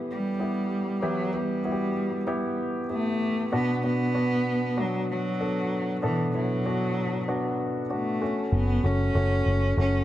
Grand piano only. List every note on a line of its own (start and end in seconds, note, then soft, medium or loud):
0.00 1.02 E3 medium
0.00 0.40 B3 medium
0.00 0.40 E4 medium
0.00 0.40 G4 medium
0.40 0.92 B3 medium
0.40 0.93 E4 medium
0.40 0.93 G4 medium
1.02 1.92 E3 medium
1.02 1.29 B3 medium
1.02 1.29 E4 medium
1.02 1.29 G4 medium
1.33 1.60 B3 medium
1.33 1.60 E4 soft
1.33 1.60 G4 medium
1.64 2.17 B3 medium
1.64 2.18 E4 medium
1.64 1.72 F#4 medium
1.71 2.21 G4 medium
2.27 2.80 B3 medium
2.27 2.80 E4 medium
2.27 2.80 G4 medium
2.90 3.43 B3 medium
2.90 3.43 E4 medium
2.90 3.43 G4 medium
3.52 4.42 B2 medium
3.52 3.79 B3 medium
3.52 3.79 D4 medium
3.52 3.79 F#4 medium
3.83 4.10 B3 medium
3.83 4.10 D4 soft
3.83 4.10 F#4 medium
4.14 4.67 B3 medium
4.14 4.67 D4 medium
4.14 4.68 F#4 medium
4.77 5.30 B3 medium
4.77 5.30 D4 medium
4.77 5.30 F#4 medium
5.40 5.93 B3 medium
5.40 5.93 D4 medium
5.40 5.93 A4 medium
6.02 6.93 B2 medium
6.02 6.29 B3 medium
6.02 6.29 D4 medium
6.02 6.29 A4 medium
6.34 6.60 B3 medium
6.34 6.60 D4 soft
6.34 6.60 E4 medium
6.65 7.18 B3 medium
6.65 7.18 D4 medium
6.65 7.18 F#4 medium
7.28 7.80 B3 medium
7.28 7.80 D4 medium
7.28 7.81 F#4 medium
7.90 8.21 B3 medium
7.90 8.21 D4 soft
7.90 8.20 F#4 medium
8.21 8.74 A3 medium
8.21 8.74 C#4 medium
8.21 8.74 F#4 medium
8.84 9.10 A3 medium
8.84 9.10 C#4 soft
8.84 9.10 F#4 medium
9.15 9.67 A3 medium
9.15 9.67 C#4 medium
9.15 9.68 F#4 medium
9.77 10.04 A3 medium
9.77 10.04 C#4 medium
9.77 10.04 F#4 medium